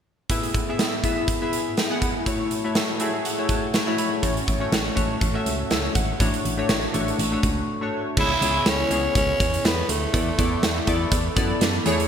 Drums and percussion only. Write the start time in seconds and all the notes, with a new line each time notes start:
0.29 kick, closed hi-hat
0.43 closed hi-hat
0.55 kick, closed hi-hat
0.79 snare, closed hi-hat
1.04 kick, closed hi-hat
1.28 kick, closed hi-hat
1.53 closed hi-hat
1.77 snare, closed hi-hat
2.02 kick, closed hi-hat
2.26 kick, closed hi-hat
2.51 closed hi-hat
2.75 snare, closed hi-hat
3.00 closed hi-hat
3.25 closed hi-hat
3.49 kick, closed hi-hat
3.74 snare, closed hi-hat
3.98 closed hi-hat
4.23 kick, closed hi-hat
4.37 closed hi-hat
4.48 kick, closed hi-hat
4.72 snare, closed hi-hat
4.97 kick, closed hi-hat
5.21 kick, closed hi-hat
5.46 closed hi-hat
5.71 snare, closed hi-hat
5.95 kick, closed hi-hat
6.20 kick, closed hi-hat
6.34 closed hi-hat
6.45 closed hi-hat
6.69 snare, closed hi-hat
6.94 closed hi-hat
7.08 closed hi-hat
7.19 closed hi-hat
7.43 kick, closed hi-hat
8.17 kick, crash
8.42 closed hi-hat
8.66 snare, closed hi-hat
8.91 closed hi-hat
9.15 kick, closed hi-hat
9.40 kick, closed hi-hat
9.54 closed hi-hat
9.65 snare, closed hi-hat
9.89 closed hi-hat
10.14 kick, closed hi-hat
10.39 kick, closed hi-hat
10.63 snare, closed hi-hat
10.87 kick, closed hi-hat
11.12 kick, closed hi-hat
11.36 kick, closed hi-hat
11.61 snare, closed hi-hat
11.86 closed hi-hat
12.00 closed hi-hat